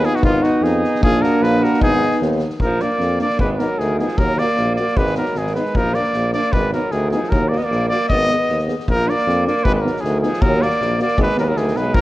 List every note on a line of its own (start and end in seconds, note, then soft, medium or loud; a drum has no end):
0.00 1.02 B3 medium
0.00 1.01 D#4 medium
0.00 snare soft
0.05 0.19 F4 medium
0.05 0.17 G#4 loud
0.16 0.24 D#4 medium
0.16 0.24 F#4 medium
0.16 snare soft
0.21 0.43 G#1 medium
0.21 0.46 B3 medium
0.21 0.45 F4 loud
0.21 kick loud
0.43 0.64 D#4 medium
0.43 0.65 F#4 medium
0.43 snare soft
0.61 0.83 F2 loud
0.61 1.03 D#4 medium
0.61 1.02 G#4 medium
0.61 snare soft
0.84 snare soft
0.95 snare soft
1.01 1.23 A#1 medium
1.01 1.83 A#3 medium
1.01 1.82 D4 medium
1.01 1.26 F4 medium
1.01 1.23 G#4 loud
1.01 kick loud
1.22 1.45 F#4 medium
1.22 1.44 A#4 medium
1.22 snare soft
1.41 1.63 A#1 loud
1.41 1.64 F4 medium
1.41 1.66 B4 medium
1.41 snare soft
1.62 1.81 F#4 medium
1.62 1.82 A#4 medium
1.62 snare soft
1.73 snare soft
1.80 2.03 G#1 medium
1.80 2.45 B3 medium
1.80 2.44 D#4 medium
1.80 2.18 D#4 medium
1.80 2.19 G#4 loud
1.80 kick medium
2.02 snare soft
2.11 snare soft
2.21 2.43 D#2 loud
2.21 snare soft
2.31 snare soft
2.39 snare soft
2.50 snare soft
2.60 2.82 A#1 medium
2.60 2.85 F3 medium
2.60 2.83 A#4 medium
2.60 kick medium
2.79 2.88 A#3 medium
2.79 3.21 A#3 medium
2.79 2.89 D4 medium
2.79 3.20 D5 medium
2.79 snare soft
2.89 snare soft
2.99 3.21 F2 medium
2.99 snare soft
3.19 3.27 A#3 medium
3.19 3.28 D4 medium
3.19 3.39 D5 medium
3.19 snare soft
3.24 3.40 A#3 medium
3.30 snare soft
3.38 3.60 G#1 loud
3.38 3.52 B4 medium
3.38 kick medium
3.44 3.57 G#3 medium
3.52 3.61 B4 medium
3.57 3.64 G#3 soft
3.57 3.66 B3 medium
3.57 3.67 D#4 medium
3.57 3.80 A#4 medium
3.57 snare soft
3.63 3.83 F#3 medium
3.79 4.00 D2 medium
3.79 4.00 D#3 medium
3.79 3.98 G#4 medium
3.79 snare soft
3.99 4.22 F3 medium
3.99 4.07 B3 medium
3.99 4.07 D#4 medium
3.99 4.19 G#4 medium
3.99 snare soft
4.08 snare soft
4.18 4.40 D#2 medium
4.18 4.41 F#3 medium
4.18 4.40 A#4 loud
4.18 kick medium
4.37 4.78 A#3 medium
4.37 4.47 A#3 medium
4.37 4.46 F#4 medium
4.37 4.76 D5 loud
4.37 snare soft
4.48 snare soft
4.56 4.79 A#1 loud
4.56 snare soft
4.76 4.86 A#3 medium
4.76 4.85 F#4 medium
4.76 4.99 D5 medium
4.76 snare soft
4.80 4.99 A#3 medium
4.88 snare soft
4.96 5.18 G#1 loud
4.96 5.17 G#3 medium
4.96 5.17 B4 loud
4.96 kick medium
5.06 snare soft
5.15 5.25 B3 medium
5.15 5.25 D#4 soft
5.15 5.39 A#4 medium
5.15 snare soft
5.19 5.40 F#3 medium
5.25 snare soft
5.35 5.57 G#1 medium
5.35 5.57 D#3 medium
5.35 5.55 G#4 medium
5.35 snare soft
5.47 snare soft
5.54 5.79 G#3 medium
5.54 5.62 B3 medium
5.54 5.64 D#4 medium
5.54 5.78 B4 medium
5.54 snare soft
5.66 snare soft
5.75 5.97 A#1 medium
5.75 5.97 F3 medium
5.75 5.96 A#4 loud
5.75 kick medium
5.92 6.01 A#3 medium
5.92 6.34 A#3 medium
5.92 6.04 D4 soft
5.92 6.34 D5 medium
5.92 snare soft
6.04 snare soft
6.13 6.36 A#1 loud
6.13 snare soft
6.33 6.41 A#3 medium
6.33 6.54 A#3 medium
6.33 6.41 D4 medium
6.33 6.54 D5 medium
6.33 snare soft
6.43 snare soft
6.53 6.75 G#1 medium
6.53 6.72 G#3 medium
6.53 6.73 B4 loud
6.53 kick medium
6.72 6.94 F#3 medium
6.72 6.81 B3 medium
6.72 6.81 D#4 medium
6.72 6.93 A#4 medium
6.72 snare soft
6.91 7.14 D2 medium
6.91 7.12 D#3 medium
6.91 7.11 G#4 medium
6.91 snare soft
7.11 7.34 F3 medium
7.11 7.19 B3 medium
7.11 7.20 D#4 medium
7.11 7.31 G#4 medium
7.11 snare soft
7.23 snare soft
7.29 7.54 D#2 medium
7.29 7.52 F#3 medium
7.29 7.50 A#4 loud
7.29 kick medium
7.49 7.60 A#3 medium
7.49 7.59 A#3 medium
7.49 7.59 F#4 medium
7.49 7.59 D5 medium
7.49 snare soft
7.58 7.67 B3 medium
7.58 7.65 D#5 medium
7.58 snare soft
7.64 7.89 A#3 medium
7.64 7.88 D5 medium
7.71 7.92 A#1 medium
7.71 snare soft
7.88 7.96 A#3 medium
7.88 8.08 A#3 medium
7.88 7.98 F#4 medium
7.88 8.07 D5 loud
7.88 snare soft
8.00 snare soft
8.09 8.31 G#1 medium
8.09 8.64 B3 medium
8.09 8.63 D#5 loud
8.09 kick medium
8.21 snare soft
8.27 8.35 B3 medium
8.27 8.36 G#4 medium
8.27 snare soft
8.40 snare soft
8.48 8.70 D#2 medium
8.48 snare soft
8.59 snare soft
8.66 8.74 B3 medium
8.66 8.75 G#4 medium
8.66 snare soft
8.79 snare soft
8.87 9.08 A#1 medium
8.87 9.11 F3 medium
8.87 9.10 A#4 loud
8.87 kick medium
9.05 9.13 D4 medium
9.05 9.14 F4 medium
9.05 9.46 D5 loud
9.09 9.46 A#3 medium
9.09 snare soft
9.18 snare soft
9.26 9.47 F2 loud
9.26 snare soft
9.44 9.68 A#3 medium
9.44 9.54 D4 medium
9.44 9.52 F4 medium
9.44 9.65 D5 medium
9.44 snare soft
9.57 snare soft
9.64 9.86 G#1 loud
9.64 9.79 G#3 medium
9.64 9.75 B4 loud
9.64 kick medium
9.76 9.88 G#3 medium
9.76 9.83 B4 medium
9.81 9.90 B3 medium
9.81 9.91 D#4 medium
9.81 10.02 A#4 medium
9.86 10.05 F#3 medium
9.86 snare soft
9.96 snare soft
10.01 10.24 D2 loud
10.01 10.22 D#3 medium
10.01 10.21 G#4 medium
10.01 snare soft
10.21 10.45 F3 medium
10.21 10.30 B3 medium
10.21 10.30 D#4 medium
10.21 10.43 G#4 medium
10.21 snare soft
10.33 snare soft
10.41 10.62 D#2 loud
10.41 10.64 F#3 medium
10.41 10.63 A#4 loud
10.41 kick loud
10.58 10.66 A#3 medium
10.58 10.68 F#4 medium
10.58 10.99 D5 loud
10.58 snare soft
10.63 11.00 A#3 medium
10.70 snare soft
10.80 11.01 A#1 medium
10.80 snare soft
10.97 11.05 A#3 medium
10.97 11.07 F#4 medium
10.97 snare soft
11.01 11.18 A#3 medium
11.01 11.18 D5 medium
11.08 snare soft
11.18 11.28 G#1 loud
11.18 11.36 G#3 medium
11.18 kick medium
11.22 11.38 B4 loud
11.35 11.54 D#2 medium
11.35 11.43 F#3 medium
11.35 11.43 B3 medium
11.35 11.45 D#4 medium
11.35 11.46 A#4 medium
11.35 snare soft
11.41 11.50 G#3 medium
11.41 11.50 B4 medium
11.48 11.60 F#3 medium
11.48 11.59 A#4 medium
11.56 11.73 D2 medium
11.56 11.79 D#3 medium
11.56 11.79 G#4 medium
11.56 snare soft
11.68 snare soft
11.73 11.92 B1 medium
11.73 11.81 B3 medium
11.73 11.82 D#4 soft
11.73 11.96 B4 loud
11.73 snare soft
11.78 11.97 G#3 medium
11.95 12.01 A#1 medium
11.95 12.01 F3 medium
11.95 12.01 A#4 loud
11.95 kick medium